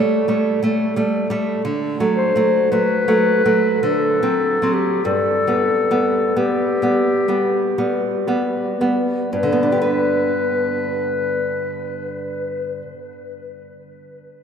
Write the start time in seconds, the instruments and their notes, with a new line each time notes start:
Already playing: nylon-string guitar G3 A3, clarinet C#5
0.28 nylon-string guitar G3 A3
0.62 nylon-string guitar G3 A3
0.96 nylon-string guitar G3 A3
1.30 nylon-string guitar G3 A3
1.65 nylon-string guitar D3
2.00 nylon-string guitar F#3 A3
2.16 clarinet C5
2.36 nylon-string guitar F#3 A3
2.71 nylon-string guitar F#3 A3, clarinet B4
3.08 nylon-string guitar F#3 A3
3.46 nylon-string guitar F#3 A3
3.83 nylon-string guitar D3, clarinet A4
4.23 nylon-string guitar F#3 C4
4.62 nylon-string guitar F#3 C4
4.73 clarinet G4
5.05 nylon-string guitar G2, clarinet A4
5.47 nylon-string guitar G3 B3
5.91 nylon-string guitar G3 B3
6.36 nylon-string guitar G3 B3, clarinet G4
6.82 nylon-string guitar G3 B3
7.28 nylon-string guitar G3 B3
7.78 nylon-string guitar G3 B3
8.27 nylon-string guitar G3 B3
8.81 nylon-string guitar G3 B3
9.32 nylon-string guitar G2, clarinet B4
9.43 nylon-string guitar D3
9.52 nylon-string guitar B3
9.63 nylon-string guitar D4
9.72 nylon-string guitar G4
9.82 nylon-string guitar B4